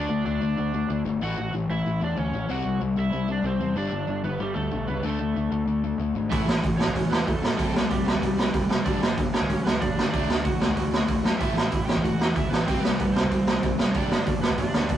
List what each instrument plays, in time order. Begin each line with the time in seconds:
Already playing: overdriven electric guitar D4 D5
0.09 picked electric bass D2, distorted electric guitar D3 A3
0.26 picked electric bass D2, distorted electric guitar D3 A3, overdriven electric guitar D4 D5
0.41 picked electric bass D2, distorted electric guitar D3 A3
0.57 picked electric bass D2, distorted electric guitar D3 A3
0.74 distorted electric guitar D3 A3
0.88 picked electric bass D2, distorted electric guitar D3 A3
1.04 picked electric bass G1, distorted electric guitar D3 A3
1.20 picked electric bass A1, distorted electric guitar A2 E3 A3, overdriven electric guitar F#4 F#5
1.37 picked electric bass A1, distorted electric guitar A2 E3
1.52 picked electric bass A1, distorted electric guitar A2 E3
1.68 picked electric bass A1, distorted electric guitar A2 E3, overdriven electric guitar E4 E5
1.85 picked electric bass A1, distorted electric guitar A2 E3
2.00 picked electric bass E2, distorted electric guitar A2 E3, overdriven electric guitar D4 D5
2.17 picked electric bass D2, distorted electric guitar A2 E3, overdriven electric guitar C#4 C#5
2.32 picked electric bass A1, distorted electric guitar A2 E3
2.48 picked electric bass C2, distorted electric guitar C3 G3 C4, overdriven electric guitar F#4 F#5
2.64 picked electric bass C2, distorted electric guitar C3 G3
2.80 picked electric bass C2, distorted electric guitar C3 G3
2.95 picked electric bass C2, distorted electric guitar C3 G3, overdriven electric guitar E5
2.99 overdriven electric guitar E4
3.11 picked electric bass C2, distorted electric guitar C3 G3
3.28 distorted electric guitar C3 G3, overdriven electric guitar D4
3.32 overdriven electric guitar D5
3.42 picked electric bass C2, distorted electric guitar C3 G3, overdriven electric guitar C4
3.46 overdriven electric guitar C5
3.60 picked electric bass E2, distorted electric guitar C3 G3
3.75 picked electric bass G1, distorted electric guitar G2 D3 G3, overdriven electric guitar D4 D5
3.92 picked electric bass G1, distorted electric guitar G2 D3
4.07 picked electric bass G1, distorted electric guitar G2 D3
4.23 picked electric bass G1, distorted electric guitar G2 D3, overdriven electric guitar B3 B4
4.39 picked electric bass G1, distorted electric guitar G2 D3, overdriven electric guitar G3 G4
4.54 picked electric bass D2, distorted electric guitar G2 D3, overdriven electric guitar A3 A4
4.71 picked electric bass B1, distorted electric guitar G2 D3
4.87 picked electric bass C#2, distorted electric guitar G2 D3, overdriven electric guitar B3 B4
5.03 picked electric bass D2, distorted electric guitar D3 A3 D4, overdriven electric guitar A3 A4
5.19 picked electric bass D2, distorted electric guitar D3 A3
5.36 picked electric bass D2, distorted electric guitar D3 A3
5.50 picked electric bass D2, distorted electric guitar D3 A3
5.65 picked electric bass D2, distorted electric guitar D3 A3
5.84 distorted electric guitar D3 A3
5.98 picked electric bass D2, distorted electric guitar D3 A3
6.14 picked electric bass G#1, distorted electric guitar D3 A3
6.31 picked electric bass A1, distorted electric guitar A2 E3 A3, overdriven electric guitar E4 E5, kick, open hi-hat
6.46 picked electric bass A1, distorted electric guitar A2 E3, snare
6.64 picked electric bass A1, distorted electric guitar A2 E3, kick, open hi-hat
6.77 picked electric bass A1, distorted electric guitar A2 E3, overdriven electric guitar C#4 C#5, snare
6.87 kick
6.95 picked electric bass A1, distorted electric guitar A2 E3, kick, open hi-hat
7.10 picked electric bass E2, distorted electric guitar A2 E3, overdriven electric guitar B3 B4, snare
7.26 picked electric bass D2, distorted electric guitar A2 E3, overdriven electric guitar A3 A4, kick, open hi-hat
7.42 picked electric bass A1, distorted electric guitar A2 E3, snare
7.57 picked electric bass C2, distorted electric guitar C3 G3 C4, overdriven electric guitar A3 A4, kick, open hi-hat
7.73 picked electric bass C2, distorted electric guitar C3 G3, snare
7.90 picked electric bass C2, distorted electric guitar C3 G3, overdriven electric guitar G3 G4, kick, open hi-hat
8.05 picked electric bass C2, distorted electric guitar C3 G3, snare
8.14 kick
8.21 picked electric bass C2, distorted electric guitar C3 G3, kick, open hi-hat
8.37 distorted electric guitar C3 G3, snare
8.53 picked electric bass C2, distorted electric guitar C3 G3, kick, open hi-hat
8.68 picked electric bass F#1, distorted electric guitar C3 G3, snare
8.85 picked electric bass G1, distorted electric guitar G2 D3 G3, overdriven electric guitar D4 D5, kick, open hi-hat
9.00 picked electric bass G1, distorted electric guitar G2 D3, snare
9.17 picked electric bass G1, distorted electric guitar G2 D3, kick, open hi-hat
9.33 picked electric bass G1, distorted electric guitar G2 D3, overdriven electric guitar C#4 C#5, snare
9.42 kick
9.49 picked electric bass G1, distorted electric guitar G2 D3, kick, open hi-hat
9.65 picked electric bass D2, distorted electric guitar G2 D3, overdriven electric guitar B3 B4, snare
9.81 picked electric bass B1, distorted electric guitar G2 D3, overdriven electric guitar D4 D5, kick, open hi-hat
9.97 picked electric bass G1, distorted electric guitar G2 D3, snare
10.10 picked electric bass D2, distorted electric guitar D3 F#3 A3 D4, overdriven electric guitar D4 D5, kick, open hi-hat
10.28 picked electric bass D2, distorted electric guitar D3 F#3 A3, snare
10.45 picked electric bass D2, distorted electric guitar D3 F#3 A3, overdriven electric guitar F#4 F#5, kick, open hi-hat
10.60 picked electric bass D2, distorted electric guitar D3 F#3 A3, snare
10.69 kick
10.76 picked electric bass D2, distorted electric guitar D3 F#3 A3, kick, open hi-hat
10.93 distorted electric guitar D3 F#3 A3, snare
11.08 picked electric bass D2, distorted electric guitar D3 F#3 A3, kick, open hi-hat
11.24 picked electric bass F#2, distorted electric guitar D3 F#3 A3, snare
11.39 picked electric bass A1, distorted electric guitar A2 E3 A3, overdriven electric guitar E4 E5, kick, open hi-hat
11.54 picked electric bass A1, distorted electric guitar A2 E3, snare
11.71 picked electric bass A1, distorted electric guitar A2 E3, kick, open hi-hat
11.86 picked electric bass A1, distorted electric guitar A2 E3, overdriven electric guitar G4 G5, snare
11.96 kick
12.03 picked electric bass A1, distorted electric guitar A2 E3, overdriven electric guitar F#4 F#5, kick, open hi-hat
12.19 picked electric bass E2, distorted electric guitar A2 E3, snare
12.35 picked electric bass D2, distorted electric guitar A2 E3, overdriven electric guitar E4 E5, kick, open hi-hat
12.50 picked electric bass A1, distorted electric guitar A2 E3, overdriven electric guitar B3 B4, snare
12.64 picked electric bass C2, distorted electric guitar C3 G3 C4, overdriven electric guitar C4 C5, kick, open hi-hat
12.81 picked electric bass C2, distorted electric guitar C3 G3, overdriven electric guitar B3 B4
12.85 snare
12.98 picked electric bass C2, distorted electric guitar C3 G3, kick, open hi-hat
13.13 picked electric bass C2, distorted electric guitar C3 G3, overdriven electric guitar C4 C5, snare
13.23 kick
13.31 picked electric bass C2, distorted electric guitar C3 G3, kick, open hi-hat
13.48 distorted electric guitar C3 G3, snare
13.63 picked electric bass C2, distorted electric guitar C3 G3, kick, open hi-hat
13.79 picked electric bass F#1, distorted electric guitar C3 G3, snare
13.92 picked electric bass G1, distorted electric guitar G2 D3, overdriven electric guitar D4 D5, kick, open hi-hat
13.96 distorted electric guitar G3
14.10 picked electric bass G1, distorted electric guitar G2 D3, snare
14.26 picked electric bass G1, distorted electric guitar G2 D3, kick, open hi-hat
14.41 picked electric bass G1, distorted electric guitar G2 D3, overdriven electric guitar B3 B4, snare
14.50 kick
14.58 picked electric bass G1, distorted electric guitar G2 D3, overdriven electric guitar D4 D5, kick, open hi-hat
14.74 picked electric bass D2, distorted electric guitar G2 D3, snare
14.89 picked electric bass B1, distorted electric guitar G2 D3, kick, open hi-hat